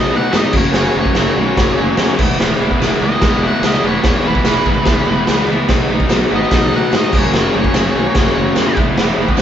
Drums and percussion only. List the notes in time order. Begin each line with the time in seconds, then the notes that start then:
0.33 snare, tambourine, crash
0.53 kick, crash
0.74 snare, crash
1.05 kick
1.15 snare, tambourine, crash
1.57 kick, snare, crash
1.97 snare, tambourine, crash
2.19 kick, crash
2.40 snare, crash
2.71 kick
2.82 snare, tambourine, crash
3.21 kick, snare, crash
3.63 snare, tambourine, crash
4.04 kick, snare, crash
4.35 kick
4.45 snare, tambourine, crash
4.66 kick
4.85 kick, snare, crash
5.27 snare, tambourine, crash
5.69 kick, snare, crash
6.00 kick
6.09 snare, tambourine, crash
6.51 kick, snare, crash
6.92 snare, tambourine, crash
7.13 kick, crash
7.34 snare, crash
7.64 kick
7.74 snare, tambourine, crash
8.15 kick, snare, crash
8.55 snare, tambourine, crash
8.77 kick
8.97 snare, crash
9.28 kick
9.37 snare, tambourine, crash